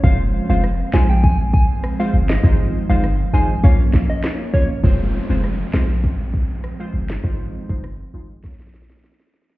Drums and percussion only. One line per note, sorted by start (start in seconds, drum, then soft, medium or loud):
0.04 kick loud
0.04 closed hi-hat medium
0.64 cross-stick medium
0.64 closed hi-hat medium
0.94 snare loud
1.23 kick loud
1.23 closed hi-hat medium
1.54 kick medium
1.84 cross-stick medium
1.84 closed hi-hat medium
2.29 snare loud
2.44 kick loud
2.44 closed hi-hat medium
3.04 cross-stick medium
3.04 closed hi-hat medium
3.63 kick loud
3.63 closed hi-hat medium
3.94 kick loud
3.94 snare medium
4.24 cross-stick medium
4.24 snare loud
4.24 closed hi-hat medium
4.54 kick medium
4.84 kick loud
4.84 closed hi-hat medium
5.44 cross-stick medium
5.44 closed hi-hat medium
5.74 snare loud
6.03 kick loud
6.03 closed hi-hat medium
6.34 kick medium
6.64 cross-stick medium
6.64 closed hi-hat medium
7.10 snare loud
7.24 kick loud
7.69 kick medium
7.84 cross-stick medium
8.44 kick medium
8.44 snare medium
8.52 snare soft
8.60 snare medium
8.67 snare medium
8.74 snare medium
8.82 snare medium
8.90 snare medium
8.97 snare medium
9.04 snare medium
9.12 snare medium
9.20 snare medium
9.27 snare medium
9.34 snare medium
9.42 snare medium
9.50 snare loud